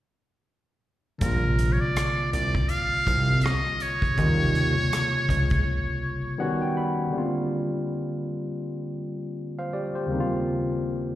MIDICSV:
0, 0, Header, 1, 5, 480
1, 0, Start_track
1, 0, Tempo, 740741
1, 787, Time_signature, 4, 2, 24, 8
1, 7226, End_track
2, 0, Start_track
2, 0, Title_t, "Muted trumpet"
2, 0, Program_c, 0, 59
2, 788, Note_on_c, 0, 70, 80
2, 1118, Note_on_c, 0, 73, 62
2, 1128, Note_off_c, 0, 70, 0
2, 1169, Note_on_c, 0, 74, 81
2, 1179, Note_off_c, 0, 73, 0
2, 1507, Note_off_c, 0, 74, 0
2, 1511, Note_on_c, 0, 74, 84
2, 1747, Note_on_c, 0, 77, 101
2, 1756, Note_off_c, 0, 74, 0
2, 2230, Note_on_c, 0, 75, 87
2, 2240, Note_off_c, 0, 77, 0
2, 2477, Note_on_c, 0, 73, 90
2, 2487, Note_off_c, 0, 75, 0
2, 4392, Note_off_c, 0, 73, 0
2, 7226, End_track
3, 0, Start_track
3, 0, Title_t, "Tine electric piano"
3, 0, Program_c, 1, 4
3, 767, Note_on_c, 1, 50, 46
3, 778, Note_on_c, 1, 55, 41
3, 792, Note_on_c, 1, 58, 44
3, 804, Note_on_c, 1, 48, 45
3, 816, Note_on_c, 1, 65, 62
3, 922, Control_c, 1, 64, 127
3, 2671, Note_off_c, 1, 50, 0
3, 2676, Note_off_c, 1, 55, 0
3, 2683, Note_on_c, 1, 49, 50
3, 2684, Note_off_c, 1, 58, 0
3, 2690, Note_off_c, 1, 48, 0
3, 2696, Note_off_c, 1, 65, 0
3, 2697, Note_on_c, 1, 55, 50
3, 2709, Note_on_c, 1, 58, 50
3, 2715, Control_c, 1, 64, 0
3, 2720, Note_on_c, 1, 48, 49
3, 2733, Note_on_c, 1, 65, 61
3, 2843, Control_c, 1, 64, 127
3, 4109, Note_off_c, 1, 49, 0
3, 4116, Note_off_c, 1, 55, 0
3, 4122, Note_off_c, 1, 58, 0
3, 4128, Note_off_c, 1, 48, 0
3, 4134, Note_off_c, 1, 65, 0
3, 4135, Note_on_c, 1, 51, 68
3, 4139, Note_on_c, 1, 55, 58
3, 4145, Note_on_c, 1, 59, 63
3, 4147, Note_on_c, 1, 78, 66
3, 4151, Note_on_c, 1, 61, 61
3, 4155, Control_c, 1, 64, 0
3, 4157, Note_on_c, 1, 66, 73
3, 4251, Control_c, 1, 64, 127
3, 4279, Note_off_c, 1, 78, 0
3, 4287, Note_on_c, 1, 79, 56
3, 4379, Note_off_c, 1, 79, 0
3, 4387, Note_on_c, 1, 83, 55
3, 4602, Note_on_c, 1, 50, 61
3, 4608, Note_off_c, 1, 55, 0
3, 4610, Note_off_c, 1, 83, 0
3, 4616, Note_on_c, 1, 55, 54
3, 4621, Note_off_c, 1, 51, 0
3, 4626, Note_off_c, 1, 59, 0
3, 4628, Note_on_c, 1, 58, 51
3, 4629, Note_off_c, 1, 61, 0
3, 4632, Note_off_c, 1, 66, 0
3, 4635, Control_c, 1, 64, 0
3, 4640, Note_on_c, 1, 60, 53
3, 4652, Note_on_c, 1, 65, 68
3, 4751, Control_c, 1, 64, 127
3, 6212, Note_on_c, 1, 77, 51
3, 6215, Note_on_c, 1, 72, 46
3, 6268, Note_off_c, 1, 50, 0
3, 6275, Note_off_c, 1, 55, 0
3, 6281, Note_off_c, 1, 58, 0
3, 6287, Note_off_c, 1, 60, 0
3, 6293, Note_off_c, 1, 65, 0
3, 6303, Note_off_c, 1, 77, 0
3, 6305, Note_off_c, 1, 72, 0
3, 6307, Note_on_c, 1, 74, 53
3, 6310, Note_on_c, 1, 67, 49
3, 6442, Note_off_c, 1, 74, 0
3, 6443, Note_off_c, 1, 67, 0
3, 6449, Note_on_c, 1, 72, 51
3, 6453, Note_on_c, 1, 67, 44
3, 6520, Note_on_c, 1, 39, 59
3, 6530, Note_on_c, 1, 49, 53
3, 6540, Note_on_c, 1, 55, 54
3, 6549, Note_on_c, 1, 58, 57
3, 6556, Control_c, 1, 64, 0
3, 6560, Note_on_c, 1, 60, 61
3, 6569, Note_on_c, 1, 63, 49
3, 6607, Note_off_c, 1, 63, 0
3, 6611, Note_on_c, 1, 65, 76
3, 6651, Control_c, 1, 64, 127
3, 6677, Note_off_c, 1, 72, 0
3, 6679, Note_off_c, 1, 67, 0
3, 7226, Note_off_c, 1, 39, 0
3, 7226, Note_off_c, 1, 49, 0
3, 7226, Note_off_c, 1, 55, 0
3, 7226, Note_off_c, 1, 58, 0
3, 7226, Note_off_c, 1, 60, 0
3, 7226, Note_off_c, 1, 65, 0
3, 7226, End_track
4, 0, Start_track
4, 0, Title_t, "Analog synth bass"
4, 0, Program_c, 2, 38
4, 791, Note_on_c, 2, 34, 84
4, 1164, Note_off_c, 2, 34, 0
4, 1512, Note_on_c, 2, 36, 77
4, 1697, Note_off_c, 2, 36, 0
4, 1993, Note_on_c, 2, 36, 82
4, 2288, Note_off_c, 2, 36, 0
4, 2710, Note_on_c, 2, 39, 108
4, 3084, Note_off_c, 2, 39, 0
4, 3430, Note_on_c, 2, 37, 69
4, 3656, Note_off_c, 2, 37, 0
4, 7226, End_track
5, 0, Start_track
5, 0, Title_t, "Drums"
5, 784, Note_on_c, 9, 42, 68
5, 787, Note_on_c, 9, 36, 73
5, 849, Note_off_c, 9, 42, 0
5, 851, Note_off_c, 9, 36, 0
5, 1028, Note_on_c, 9, 42, 57
5, 1093, Note_off_c, 9, 42, 0
5, 1273, Note_on_c, 9, 42, 72
5, 1276, Note_on_c, 9, 37, 80
5, 1338, Note_off_c, 9, 42, 0
5, 1340, Note_off_c, 9, 37, 0
5, 1512, Note_on_c, 9, 42, 57
5, 1577, Note_off_c, 9, 42, 0
5, 1651, Note_on_c, 9, 36, 75
5, 1716, Note_off_c, 9, 36, 0
5, 1742, Note_on_c, 9, 42, 62
5, 1806, Note_off_c, 9, 42, 0
5, 1988, Note_on_c, 9, 36, 74
5, 1992, Note_on_c, 9, 42, 53
5, 2053, Note_off_c, 9, 36, 0
5, 2057, Note_off_c, 9, 42, 0
5, 2212, Note_on_c, 9, 42, 56
5, 2240, Note_on_c, 9, 37, 89
5, 2277, Note_off_c, 9, 42, 0
5, 2305, Note_off_c, 9, 37, 0
5, 2464, Note_on_c, 9, 42, 59
5, 2529, Note_off_c, 9, 42, 0
5, 2606, Note_on_c, 9, 36, 81
5, 2625, Note_on_c, 9, 42, 28
5, 2670, Note_off_c, 9, 36, 0
5, 2690, Note_off_c, 9, 42, 0
5, 2706, Note_on_c, 9, 42, 61
5, 2707, Note_on_c, 9, 36, 76
5, 2771, Note_off_c, 9, 42, 0
5, 2772, Note_off_c, 9, 36, 0
5, 2948, Note_on_c, 9, 42, 51
5, 3013, Note_off_c, 9, 42, 0
5, 3193, Note_on_c, 9, 42, 77
5, 3196, Note_on_c, 9, 37, 80
5, 3258, Note_off_c, 9, 42, 0
5, 3261, Note_off_c, 9, 37, 0
5, 3427, Note_on_c, 9, 36, 67
5, 3436, Note_on_c, 9, 42, 61
5, 3492, Note_off_c, 9, 36, 0
5, 3500, Note_off_c, 9, 42, 0
5, 3564, Note_on_c, 9, 42, 28
5, 3572, Note_on_c, 9, 36, 80
5, 3629, Note_off_c, 9, 42, 0
5, 3636, Note_off_c, 9, 36, 0
5, 7226, End_track
0, 0, End_of_file